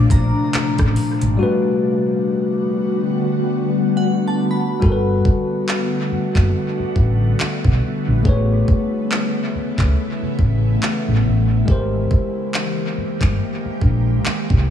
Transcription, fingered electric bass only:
0.10 A#1
0.54 muted fingered electric bass stroke
0.79 A1
1.22 G#1
4.83 G1
6.12 muted fingered electric bass stroke
6.35 F#1
6.79 muted fingered electric bass stroke
6.96 A1
7.40 muted fingered electric bass stroke
7.65 B1
8.08 A#1
8.26 A1
9.55 muted fingered electric bass stroke
9.78 C#2
10.22 muted fingered electric bass stroke
10.39 A1
11.08 A1
11.26 A1
11.68 G#1
12.98 muted fingered electric bass stroke
13.21 G1
13.65 muted fingered electric bass stroke
13.82 A#1
14.26 muted fingered electric bass stroke
14.51 C2

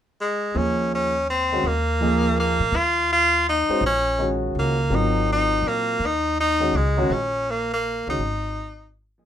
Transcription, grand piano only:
0.54 F3 A#3 D#4 G#4
1.52 D#3 G#3 C#4 F#4
2.01 F3 A#3 D#4 G#4
3.69 G#3 C#4 F#4 C5
4.19 D#3 G#3 C#4 F#4
4.90 F#3 C4 F4 A#4
6.60 D#3 G#3 C#4 F#4
6.97 D#3 G#3 C#4 F#4
8.07 D#3 G#3 C#4 F#4
9.18 F3 A#3 D#4 G#4

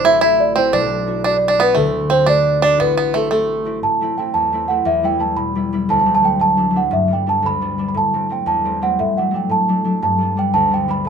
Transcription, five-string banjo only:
0.05 E4
0.21 E4
0.56 C4
0.73 D4
1.24 D4
1.48 D4
1.60 B3
1.75 A3
2.10 C4
2.26 D4
2.62 D4
2.80 B3
2.97 B3
3.14 A3
3.31 A3

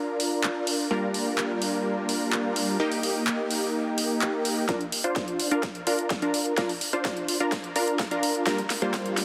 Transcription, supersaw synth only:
Already playing: D4 F4 A#4
0.91 G3 A#3 D4 F4 A#4
2.80 A#3 D#4 G4
4.69 D4 F4 A#4
5.04 D4 F4 C5
5.51 D4 F4 A#4
5.87 D4 F4 A#4
6.22 D4 F4 A#4
6.58 D4 F4 A#4
6.93 D4 F4 C5
7.40 D4 F4 A#4
7.76 D4 F4 A#4
8.11 D4 F4 A#4
8.47 G3 A#3 D4 F4 A#4
8.82 G3 A#3 D4 F4 C5

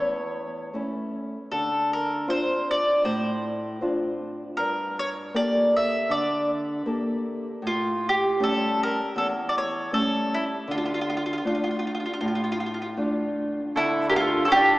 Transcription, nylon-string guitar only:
Already playing: E2
0.73 A3 C#4 E4
1.51 D3
2.28 C4 D4 F4
3.04 A2
3.81 C4 D4 F4
4.59 G2
5.34 A#3 G4 A4
6.09 D3
6.86 A#3 G4 A4
7.62 A2
8.40 G3 A3 C#4
9.16 E2
9.92 G3 A3 C#4
10.68 D3
11.45 A3 D4 F4
12.21 A2
12.97 A3 D4 F4
13.76 D3
14.52 D3 E4 F4

